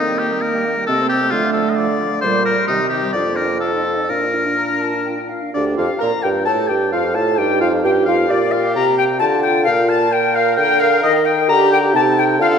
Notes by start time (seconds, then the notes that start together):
Already playing: D#3 A#3 C4 D#4
0.08 G3 G5
0.19 A#3 G4 D#5
0.30 G3 G5
0.41 A#3 A#4 D#5
0.54 G3 G5
0.65 A#3 D#5
0.77 G3 G5
0.86 C3 C4 A4 D#5
0.99 A3 C5
1.09 C4 G4 D#5
1.21 A3 C5
1.31 D3 F3 A3 F4 F5
1.44 A3 D5
1.53 F3 A4
1.57 F5
1.66 A3 D5 D#5
1.76 F3 D5
1.82 F5
1.89 A3 D5
2.00 F3 F5
2.11 A3 D5
2.21 A#2 G3 A#3 C5 D5
2.34 G3 A#4
2.45 A#3 A#4 D5
2.57 G3 A#4
2.67 C3 D#3 D#4 G4 D#5
2.80 G3 C5
2.90 D#3 G4 D#5
3.03 G3 C5
3.13 F2 D4 F4 D5 F5
3.25 A#3 D5
3.36 D4 A#4 F5
3.47 A#3 D5
3.59 F4 A4 F5
3.70 D#4 D#5
3.84 F4 F5
3.94 D#4 D#5
4.09 A#2 D4 F4 A#4 F5
4.20 D4 D5
4.34 F4 F5
4.46 D4 D5
4.56 F4 A#5
4.69 D4
4.80 F4 A5
4.95 D4
5.04 F4 G5
5.18 D4
5.28 F4 F5
5.42 D4
5.53 D2 D4 G4 D5
5.77 F2 F4 F5
5.98 F4 A#4 A#5
6.02 A#2
6.22 G2 G4 G5
6.45 A2 G4 A4 A5
6.68 G2 G4 G5
6.91 F2 F4 F5
7.14 A2 A4 A5
7.36 G2 D#4 G4 G5
7.61 F2 F4 F5
7.84 G2 F4 G4 G5
8.06 F2 F4 F5
8.29 A#2 G4 D5
8.51 F5
8.75 C3 A#5
8.97 G5
9.19 D3 F4 A5
9.41 G5
9.64 A#2 A#4 F5
9.88 A5
10.11 A#4 G5
10.34 F5
10.57 D3 G5
10.79 F5
11.02 D#3 D#5
11.25 G5
11.48 D3 G4 A#5
11.72 G5
11.93 C3 D#4 A4 A5
12.17 G5
12.40 D3 F4 A4 F5